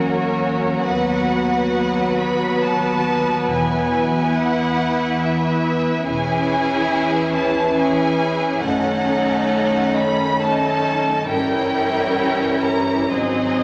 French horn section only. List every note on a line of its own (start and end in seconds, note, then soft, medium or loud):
0.00 3.50 F#3 soft
0.00 0.87 A#3 soft
0.85 5.92 B3 soft
3.50 5.92 E3 soft
6.09 8.59 E3 medium
6.09 11.23 C#4 medium
8.62 11.22 D#3 soft
11.25 13.05 E3 soft
11.25 13.04 C#4 soft
13.10 13.63 F#3 soft
13.10 13.63 C4 soft